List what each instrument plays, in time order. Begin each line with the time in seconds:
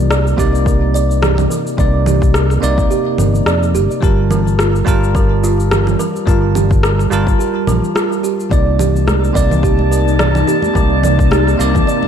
Already playing: fingered electric bass C2, tine electric piano C3 A#3 D#4 D5
0.10 kalimba D5, cross-stick, shaker
0.27 shaker
0.37 fingered electric bass C2, tine electric piano C3 A#3 D#4 D5, kalimba G4, kick, shaker
0.55 shaker
0.66 kalimba A#4, kick, shaker
0.94 kalimba D5, shaker
1.11 shaker
1.22 kalimba G4, cross-stick, low conga, shaker
1.38 low conga, shaker
1.50 kalimba A#4, shaker
1.67 shaker
1.77 fingered electric bass C2, tine electric piano C3 A#3 D#4 D5, kalimba D5, kick, shaker
2.06 kalimba G4, low conga, shaker
2.22 kick, shaker
2.34 kalimba A#4, cross-stick, shaker
2.50 cross-stick, shaker
2.61 fingered electric bass C2, tine electric piano C3 A#3 D#4 D5, kalimba D5, shaker
2.78 kick, shaker
2.90 kalimba G4, shaker
3.18 fingered electric bass G1, kalimba A#4, low conga, shaker
3.35 shaker
3.46 fingered electric bass F2, kalimba D5, cross-stick, shaker
3.63 shaker
3.74 fingered electric bass G1, kalimba G4, shaker
3.91 shaker
4.00 fingered electric bass G1, tine electric piano G3 F4 A#4 A5, kalimba G4, kick, shaker
4.31 kalimba A#4, low conga, shaker
4.48 shaker
4.59 kalimba F4, cross-stick, shaker
4.75 shaker
4.85 fingered electric bass G1, tine electric piano G3 F4 A#4 A5, kalimba G4, kick, shaker
5.04 shaker
5.15 kalimba A#4, kick, shaker
5.43 kalimba F4, shaker
5.60 shaker
5.71 kalimba G4, cross-stick, low conga, shaker
5.87 low conga, shaker
5.99 kalimba A#4, shaker
6.16 shaker
6.25 fingered electric bass G1, tine electric piano G3 F4 A#4 A5, kalimba F4, kick, shaker
6.55 kalimba G4, low conga, shaker
6.71 kick, shaker
6.83 kalimba A#4, cross-stick, shaker
6.99 cross-stick, shaker
7.10 fingered electric bass G1, tine electric piano G3 F4 A#4 A5, kalimba F4, shaker
7.27 kick, shaker
7.39 kalimba G4, shaker
7.67 fingered electric bass A#1, kalimba A#4, low conga, shaker
7.84 shaker
7.95 kalimba F4, cross-stick, shaker
8.12 shaker
8.23 kalimba G4, shaker
8.40 shaker
8.50 fingered electric bass C2, tine electric piano C3 A#3 D#4 D5, ambient pad C3 A#3 D#4 D5, kalimba D5, synth texture A5, kick, shaker
8.79 kalimba G4, low conga, shaker
8.96 shaker
9.07 kalimba A#4, cross-stick, high conga, shaker
9.24 shaker
9.33 fingered electric bass C2, tine electric piano C3 A#3 D#4 D5, kalimba D5, kick, shaker
9.51 low conga, shaker
9.63 kalimba G4, kick, shaker
9.79 high conga
9.91 kalimba A#4, shaker
10.08 shaker
10.19 kalimba D5, cross-stick, low conga, shaker
10.35 low conga, shaker
10.47 kalimba G4, shaker
10.62 high conga, shaker
10.73 fingered electric bass C2, tine electric piano C3 A#3 D#4 D5, ambient pad C4, kalimba A#4, kick, shaker
11.03 kalimba D5, low conga, shaker
11.19 kick, shaker
11.31 kalimba G4, cross-stick, high conga, shaker
11.47 cross-stick, shaker
11.58 fingered electric bass C2, tine electric piano C3 A#3 D#4 D5, kalimba A#4, shaker
11.75 kick, low conga, shaker
11.87 kalimba D5, shaker
12.03 high conga